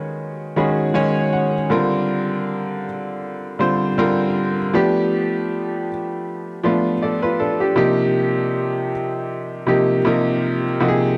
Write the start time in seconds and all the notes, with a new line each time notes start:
Already playing: D#3 G#3 C#4 F#4 B4
0.56 D#3 G#3 C#4 F#4 G#4 B5
0.94 D#3 G#3 C#4 F#4 C#5 G#5
1.33 F#5
1.70 D3 G3 C4 F4 A#4
3.59 D3 G3 C4 F4 C5
3.98 D3 G3 C4 F4 A#4
4.74 F3 A3 B3 D4 G4
6.64 F3 A3 B3 D4 F4
7.03 A4 D5
7.22 F4 B4
7.40 D4 A4
7.60 D4 G4
7.76 C3 F3 A#3 D#4 G4
9.67 C3 F3 A#3 D#4 G4
10.05 C3 F3 A#3 D#4 A#4
10.80 C3 F3 A#3 D#4 F#4
10.88 G#4